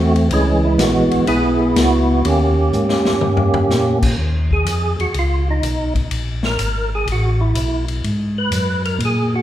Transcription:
Already playing: tonewheel organ E2 A3 C4 F#4
0.16 ride
0.30 tonewheel organ C#2 E3 G#3 C#4, ride
0.64 tonewheel organ E4
0.79 tonewheel organ A#1 B3 F#4, snare, hi-hat pedal, ride
1.11 tonewheel organ A#1, ride
1.27 tonewheel organ B1 B3 E4 G#4, ride
1.62 tonewheel organ G#4
1.75 tonewheel organ C#2 B3 F#4, snare, hi-hat pedal, ride
2.25 tonewheel organ D#2 A#3 C#4 G4, ride
2.73 tonewheel organ G#2, hi-hat pedal
2.89 snare
3.05 tonewheel organ G#2, snare
3.21 tonewheel organ G2, mid tom
3.37 floor tom
3.54 floor tom
3.69 tonewheel organ A#2, snare, hi-hat pedal
4.02 kick, crash
4.18 tonewheel organ D#2
4.51 tonewheel organ G#4, kick
4.65 tonewheel organ F2, hi-hat pedal, ride
4.99 tonewheel organ F2 F#4, ride
5.14 tonewheel organ C#2, ride
5.19 tonewheel organ F4
5.50 tonewheel organ D#4
5.62 tonewheel organ B1, hi-hat pedal, ride
5.95 kick, ride
6.10 tonewheel organ A#1, ride
6.43 tonewheel organ A#4, snare
6.59 tonewheel organ G#1, hi-hat pedal, ride
6.95 tonewheel organ G#4
7.07 tonewheel organ A1, ride
7.12 tonewheel organ F#4
7.41 tonewheel organ E4
7.55 tonewheel organ B1, hi-hat pedal, ride
7.88 ride
8.04 tonewheel organ G#2, ride
8.38 tonewheel organ B4
8.52 tonewheel organ F#2, hi-hat pedal, ride
8.85 tonewheel organ A#4, ride
8.99 tonewheel organ A#2, ride
9.05 tonewheel organ G#4
9.35 tonewheel organ F#4

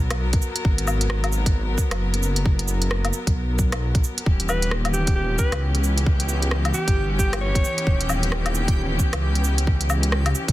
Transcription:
Already playing: detuned saw bass B1, string section F#3 B3 A#4
0.11 cross-stick, closed hi-hat, low woodblock
0.33 kick, closed hi-hat
0.42 cabasa
0.56 closed hi-hat
0.65 detuned saw bass G#1, kick
0.78 closed hi-hat
0.87 cabasa, low woodblock
1.01 closed hi-hat
1.10 cross-stick
1.24 closed hi-hat, low woodblock
1.32 cabasa
1.46 kick, closed hi-hat
1.78 kick, cabasa
1.91 detuned saw bass F#1, cross-stick, closed hi-hat, low woodblock
2.14 closed hi-hat
2.23 cabasa
2.36 closed hi-hat
2.46 kick
2.59 closed hi-hat
2.68 cabasa
2.82 closed hi-hat
2.91 cross-stick
3.05 closed hi-hat, low woodblock
3.13 cabasa
3.27 detuned saw bass B1, kick, closed hi-hat
3.59 kick, cabasa
3.72 cross-stick, closed hi-hat, low woodblock
3.95 kick, closed hi-hat
4.04 cabasa
4.18 closed hi-hat
4.26 detuned saw bass D#1, string section E3 B3 C#4 G4, synth texture G4 G5, kick
4.40 closed hi-hat
4.49 alto saxophone B4, cabasa, low woodblock
4.62 closed hi-hat
4.71 cross-stick
4.85 closed hi-hat, low woodblock
4.93 alto saxophone G4, cabasa
5.07 kick, closed hi-hat
5.15 alto saxophone G4
5.38 alto saxophone B4, kick, cabasa
5.52 detuned saw bass C#2, cross-stick, closed hi-hat, low woodblock
5.75 closed hi-hat
5.84 cabasa
5.98 closed hi-hat
6.06 kick
6.20 closed hi-hat
6.29 cabasa
6.42 closed hi-hat
6.51 cross-stick
6.65 closed hi-hat, low woodblock
6.74 alto saxophone G4, cabasa
6.88 detuned saw bass G1, kick, closed hi-hat
7.19 alto saxophone G4, kick, cabasa
7.33 cross-stick, closed hi-hat, low woodblock
7.41 alto saxophone C#5
7.55 kick, closed hi-hat
7.65 cabasa
7.78 closed hi-hat
7.87 detuned saw bass D#1, kick
8.01 closed hi-hat
8.10 cabasa, low woodblock
8.23 closed hi-hat
8.32 cross-stick
8.46 closed hi-hat, low woodblock
8.55 cabasa
8.68 kick, closed hi-hat
9.00 kick, cabasa
9.13 detuned saw bass C#2, cross-stick, closed hi-hat, low woodblock
9.35 closed hi-hat
9.44 cabasa
9.58 closed hi-hat
9.67 kick
9.81 closed hi-hat
9.90 cabasa, low woodblock
10.03 closed hi-hat
10.12 cross-stick
10.26 closed hi-hat, low woodblock
10.35 cabasa
10.48 detuned saw bass G1, kick, closed hi-hat

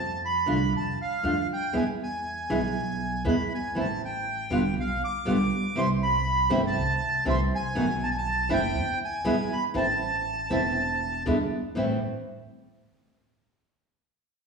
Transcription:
Already playing: upright bass F2, bandoneon A5
0.25 bandoneon B5
0.46 upright bass C2, nylon-string guitar D3 A3 D4 F4
0.51 bandoneon B5
0.73 upright bass F2
0.77 bandoneon A5
1.02 bandoneon F5
1.23 upright bass F2, nylon-string guitar D3 A3 D4 F4
1.53 bandoneon G5
1.73 upright bass E2, nylon-string guitar B2 E3 G#3 B3 E4, bandoneon G#5
2.03 bandoneon G#5
2.50 upright bass B1, nylon-string guitar B2 E3 G#3 B3 E4
3.24 upright bass E2, nylon-string guitar B2 E3 G#3 B3 E4, bandoneon B5
3.55 bandoneon G#5
3.75 upright bass A1, nylon-string guitar E3 A3 C4 E4
3.80 bandoneon A5
4.05 bandoneon G5
4.50 upright bass E1, nylon-string guitar B2 D3 G3 B3 F4
4.76 upright bass B1
4.80 bandoneon F5
5.04 bandoneon D6
5.25 upright bass B1, nylon-string guitar B2 D3 G3 B3 F4
5.75 upright bass C2, nylon-string guitar C3 E3 G3 C4 E4, bandoneon C6
6.03 bandoneon B5
6.50 upright bass G1, nylon-string guitar C3 E3 A3 C4 E4
6.67 bandoneon A5
6.76 upright bass C2
7.25 upright bass C2, nylon-string guitar C3 E3 A3 C4 E4
7.30 bandoneon C6
7.55 bandoneon G#5
7.75 upright bass B1, nylon-string guitar B2 D#3 A3 B3 F#4
8.03 bandoneon A5
8.11 bandoneon G#5
8.18 bandoneon A5
8.49 upright bass F#1, nylon-string guitar E3 A3 C4 E4
8.53 bandoneon G5
8.75 upright bass E2
9.05 bandoneon G#5
9.25 upright bass E2, nylon-string guitar B2 E3 G#3 B3 E4
9.53 bandoneon B5
9.74 upright bass A1, nylon-string guitar E3 A3 C4 E4, bandoneon A5
10.50 upright bass E1, nylon-string guitar E3 A3 C4 E4
11.26 upright bass E2, nylon-string guitar B2 D3 G#3 B3 E4
11.75 upright bass A1, nylon-string guitar A2 E3 A3 C4 E4

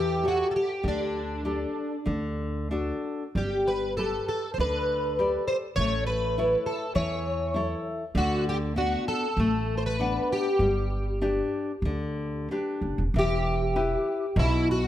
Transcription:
Already playing: upright bass E2, nylon-string guitar E3
0.00 twelve-string acoustic guitar G4
0.23 nylon-string guitar G4 A4 C#5
0.28 twelve-string acoustic guitar F#4
0.51 twelve-string acoustic guitar A4
0.56 twelve-string acoustic guitar G4
0.83 upright bass D2, nylon-string guitar D3
0.88 twelve-string acoustic guitar D4
1.45 nylon-string guitar D4 G4 A4
2.06 upright bass D2, nylon-string guitar D3
2.71 nylon-string guitar D4 F#4 A4
3.35 upright bass G1, nylon-string guitar G3, twelve-string acoustic guitar G4
3.68 twelve-string acoustic guitar B4
3.97 nylon-string guitar G4 A4 B4, twelve-string acoustic guitar A4
4.28 twelve-string acoustic guitar A4
4.54 twelve-string acoustic guitar C5
4.58 upright bass D2, nylon-string guitar D3, twelve-string acoustic guitar B4
5.19 nylon-string guitar G4 A4 D5
5.48 twelve-string acoustic guitar C5
5.76 upright bass A1, nylon-string guitar A3, twelve-string acoustic guitar C#5
6.07 twelve-string acoustic guitar B4
6.38 nylon-string guitar E4 A4 C#5
6.66 twelve-string acoustic guitar A4
6.95 upright bass E2, nylon-string guitar E3, twelve-string acoustic guitar C#5
7.54 nylon-string guitar E4 A4 C#5
8.15 upright bass D2, nylon-string guitar D3, twelve-string acoustic guitar F#4
8.49 twelve-string acoustic guitar G4
8.76 nylon-string guitar B3 D4 F#4, twelve-string acoustic guitar F#4
9.08 twelve-string acoustic guitar A4
9.37 upright bass A1, nylon-string guitar A3
9.78 twelve-string acoustic guitar C5
9.86 twelve-string acoustic guitar B4
9.99 nylon-string guitar B3 D4 F#5
10.32 twelve-string acoustic guitar G4
10.59 upright bass G1, nylon-string guitar G3
11.22 nylon-string guitar D4 G4 B4
11.82 upright bass D2, nylon-string guitar D3
12.51 nylon-string guitar D4 G4 B4
12.81 upright bass F#1
12.98 upright bass E1
13.14 upright bass E1, nylon-string guitar E3
13.19 twelve-string acoustic guitar G4
13.76 nylon-string guitar E4 G4 B4
14.36 upright bass B1, nylon-string guitar B2, twelve-string acoustic guitar E4
14.71 twelve-string acoustic guitar F#4

